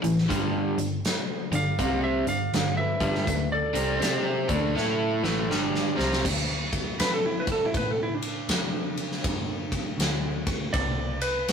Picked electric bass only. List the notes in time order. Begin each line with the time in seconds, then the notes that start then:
0.04 A1
0.30 G1
0.78 G1
1.51 G1
1.79 C2
2.25 G1
2.52 G1
3.01 G1
3.27 D2
3.75 C2
4.02 C3
4.49 D2
4.75 A2
5.24 A1
5.51 G1
5.99 C2
6.25 D2
7.00 F2
7.75 A2
8.49 F2
9.25 F#2
9.98 D2
10.74 C2
11.49 B1